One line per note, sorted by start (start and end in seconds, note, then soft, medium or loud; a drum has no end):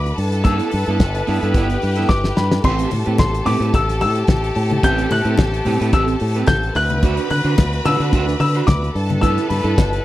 0.00 0.11 D2 loud
0.00 0.16 D3 medium
0.00 0.14 C4 medium
0.00 0.16 F#4 medium
0.00 0.16 B4 medium
0.00 0.15 B5 loud
0.00 0.46 D6 loud
0.05 muted clean electric guitar stroke soft
0.05 closed hi-hat soft
0.16 0.59 G2 loud
0.16 2.63 G3 medium
0.16 2.63 E4 medium
0.16 1.51 A4 medium
0.16 2.63 A4 medium
0.16 2.63 B4 loud
0.16 1.52 A5 medium
0.16 open hi-hat medium
0.32 muted clean electric guitar stroke soft
0.32 closed hi-hat medium
0.44 0.56 A#3 medium
0.44 0.71 E4 loud
0.44 0.71 A4 loud
0.44 0.95 E6 medium
0.44 kick loud
0.44 closed hi-hat medium
0.56 0.70 B3 medium
0.56 closed hi-hat medium
0.71 0.84 G2 loud
0.71 muted clean electric guitar stroke soft
0.71 open hi-hat medium
0.86 1.01 G2 loud
0.86 0.99 B3 medium
0.86 1.00 E4 medium
0.86 1.00 A4 medium
0.86 closed hi-hat soft
1.00 1.21 G1 loud
1.00 kick loud
1.00 snare loud
1.00 closed hi-hat medium
1.15 muted clean electric guitar stroke medium
1.15 closed hi-hat medium
1.27 1.39 G2 loud
1.27 1.42 B3 loud
1.27 1.42 E4 medium
1.27 1.41 A4 loud
1.27 open hi-hat medium
1.42 1.52 G2 loud
1.42 1.53 B3 medium
1.42 1.54 E4 medium
1.42 1.55 A4 medium
1.42 closed hi-hat medium
1.54 1.75 G1 loud
1.54 1.76 B3 loud
1.54 1.69 E4 loud
1.54 2.62 G4 medium
1.54 1.68 A4 loud
1.54 2.62 G5 medium
1.54 kick loud
1.54 closed hi-hat medium
1.69 muted clean electric guitar stroke medium
1.69 closed hi-hat medium
1.82 2.04 G2 loud
1.82 muted clean electric guitar stroke soft
1.82 open hi-hat medium
1.96 2.09 B3 medium
1.96 2.09 E4 medium
1.96 2.10 A4 medium
1.96 closed hi-hat medium
2.09 2.30 G1 loud
2.09 2.15 D6 loud
2.09 muted clean electric guitar stroke soft
2.09 kick loud
2.09 snare medium
2.24 muted clean electric guitar stroke soft
2.24 snare medium
2.37 2.58 G2 loud
2.37 2.65 B5 medium
2.37 snare loud
2.52 muted clean electric guitar stroke soft
2.52 snare loud
2.63 2.85 A1 loud
2.63 6.71 A3 medium
2.63 8.90 C4 medium
2.63 2.90 C4 medium
2.63 6.71 G4 loud
2.63 2.90 G4 medium
2.63 6.72 A4 medium
2.63 2.91 B4 medium
2.63 6.72 A5 medium
2.63 3.18 C6 medium
2.63 kick loud
2.63 crash medium
2.63 muted conga medium
2.79 closed hi-hat medium
2.91 3.03 A2 medium
2.91 muted clean electric guitar stroke soft
2.91 open hi-hat medium
2.91 muted conga medium
3.06 3.17 A2 loud
3.06 3.18 C4 medium
3.06 3.19 G4 medium
3.06 3.19 B4 medium
3.06 closed hi-hat medium
3.18 3.40 A1 medium
3.18 3.48 C6 medium
3.18 kick loud
3.18 snare loud
3.18 closed hi-hat medium
3.18 high conga medium
3.34 muted clean electric guitar stroke medium
3.34 closed hi-hat medium
3.45 3.58 A2 loud
3.45 3.61 C4 medium
3.45 3.60 G4 loud
3.45 3.59 B4 loud
3.45 3.75 D6 loud
3.45 open hi-hat medium
3.45 low conga medium
3.60 3.70 A2 loud
3.60 3.72 C4 soft
3.60 3.73 G4 medium
3.60 3.73 B4 medium
3.60 closed hi-hat medium
3.73 4.02 A1 medium
3.73 4.00 E6 loud
3.73 muted clean electric guitar stroke medium
3.73 kick loud
3.73 closed hi-hat medium
3.73 muted conga medium
3.88 muted clean electric guitar stroke soft
3.88 snare soft
3.88 closed hi-hat medium
4.01 4.22 A2 medium
4.01 4.52 E6 loud
4.01 open hi-hat medium
4.01 muted conga soft
4.16 muted clean electric guitar stroke soft
4.16 closed hi-hat medium
4.27 4.50 A1 loud
4.27 muted clean electric guitar stroke soft
4.27 kick loud
4.27 snare loud
4.27 closed hi-hat medium
4.27 high conga medium
4.44 muted clean electric guitar stroke soft
4.44 closed hi-hat soft
4.55 4.77 A2 loud
4.55 open hi-hat medium
4.70 muted clean electric guitar stroke medium
4.70 closed hi-hat medium
4.70 high conga medium
4.83 5.04 A1 loud
4.83 5.09 C4 medium
4.83 5.09 G4 medium
4.83 5.10 B4 loud
4.83 5.12 G6 loud
4.83 kick loud
4.83 closed hi-hat medium
4.83 muted conga medium
4.98 closed hi-hat medium
5.10 5.22 A2 loud
5.10 5.96 F#6 loud
5.10 muted clean electric guitar stroke soft
5.10 open hi-hat medium
5.10 muted conga medium
5.25 5.35 A2 loud
5.25 5.37 C4 medium
5.25 5.38 G4 medium
5.25 5.38 B4 medium
5.25 closed hi-hat soft
5.38 5.60 A1 loud
5.38 muted clean electric guitar stroke soft
5.38 kick loud
5.38 snare loud
5.38 closed hi-hat medium
5.38 high conga medium
5.53 muted clean electric guitar stroke soft
5.53 closed hi-hat medium
5.65 5.77 A2 loud
5.65 5.81 C4 medium
5.65 5.80 G4 medium
5.65 5.79 B4 medium
5.65 open hi-hat medium
5.65 low conga medium
5.80 5.91 A2 loud
5.80 5.92 C4 medium
5.80 5.93 G4 medium
5.80 5.93 B4 medium
5.80 closed hi-hat medium
5.93 6.14 A1 loud
5.93 6.15 C4 medium
5.93 6.08 G4 medium
5.93 6.06 B4 loud
5.93 6.50 E6 loud
5.93 kick loud
5.93 closed hi-hat medium
5.93 muted conga medium
6.08 muted clean electric guitar stroke soft
6.08 closed hi-hat soft
6.20 6.42 A2 medium
6.20 muted clean electric guitar stroke soft
6.20 open hi-hat medium
6.34 6.48 C4 medium
6.34 6.48 G4 medium
6.34 6.49 B4 medium
6.34 closed hi-hat soft
6.47 6.69 A1 loud
6.47 6.76 G6 loud
6.47 kick loud
6.47 snare loud
6.47 closed hi-hat medium
6.47 high conga medium
6.63 muted clean electric guitar stroke soft
6.63 closed hi-hat soft
6.74 7.17 D2 loud
6.74 8.92 D3 medium
6.74 8.93 F#4 medium
6.74 8.92 B4 loud
6.74 8.91 B5 loud
6.74 7.29 F#6 loud
6.74 open hi-hat medium
6.90 muted clean electric guitar stroke soft
6.90 closed hi-hat medium
6.90 high conga medium
7.03 7.28 D4 medium
7.03 7.29 F#4 medium
7.03 7.30 C5 medium
7.03 kick loud
7.03 closed hi-hat medium
7.03 muted conga medium
7.17 closed hi-hat medium
7.30 7.42 D3 loud
7.30 7.87 F#6 loud
7.30 muted clean electric guitar stroke soft
7.30 open hi-hat medium
7.30 muted conga medium
7.44 7.55 D3 loud
7.44 7.56 D4 medium
7.44 7.57 F#4 medium
7.44 7.57 C5 medium
7.44 closed hi-hat soft
7.57 7.79 D2 loud
7.57 muted clean electric guitar stroke soft
7.57 kick loud
7.57 snare loud
7.57 closed hi-hat medium
7.57 high conga medium
7.73 muted clean electric guitar stroke soft
7.73 closed hi-hat medium
7.85 7.96 D3 loud
7.85 8.01 D4 medium
7.85 8.00 F#4 loud
7.85 7.99 C5 loud
7.85 8.37 E6 loud
7.85 open hi-hat medium
7.85 low conga medium
8.00 8.15 D3 loud
8.00 8.11 D4 medium
8.00 8.13 F#4 medium
8.00 8.13 C5 medium
8.00 closed hi-hat medium
8.13 8.34 D2 loud
8.13 8.35 D4 loud
8.13 8.28 F#4 loud
8.13 8.27 C5 loud
8.13 kick loud
8.13 closed hi-hat medium
8.13 muted conga medium
8.28 muted clean electric guitar stroke soft
8.28 snare soft
8.28 closed hi-hat soft
8.40 8.61 D3 loud
8.40 8.46 E6 loud
8.40 muted clean electric guitar stroke medium
8.40 open hi-hat medium
8.40 muted conga soft
8.54 8.67 D4 medium
8.54 8.67 F#4 medium
8.54 8.68 C5 medium
8.54 closed hi-hat soft
8.67 8.89 D2 loud
8.67 9.24 D6 loud
8.67 muted clean electric guitar stroke soft
8.67 kick loud
8.67 snare loud
8.67 closed hi-hat medium
8.67 high conga medium
8.82 muted clean electric guitar stroke soft
8.82 closed hi-hat soft
8.95 9.37 G2 loud
8.95 10.05 G3 medium
8.95 10.05 E4 medium
8.95 10.05 A4 medium
8.95 10.05 B4 loud
8.95 10.05 A5 medium
8.95 open hi-hat medium
9.09 muted clean electric guitar stroke medium
9.09 closed hi-hat soft
9.09 high conga medium
9.21 9.48 E4 medium
9.21 9.48 A4 loud
9.21 9.48 B4 medium
9.21 9.50 E6 loud
9.21 kick loud
9.21 closed hi-hat medium
9.21 muted conga medium
9.38 closed hi-hat medium
9.49 9.61 G2 medium
9.49 10.01 B5 medium
9.49 muted clean electric guitar stroke soft
9.49 open hi-hat medium
9.49 muted conga medium
9.63 9.74 G2 loud
9.63 9.76 E4 soft
9.63 9.76 A4 medium
9.63 9.77 B4 medium
9.63 closed hi-hat soft
9.77 9.99 G1 medium
9.77 muted clean electric guitar stroke soft
9.77 kick loud
9.77 snare loud
9.77 closed hi-hat medium
9.77 high conga medium
9.91 muted clean electric guitar stroke soft
9.91 closed hi-hat medium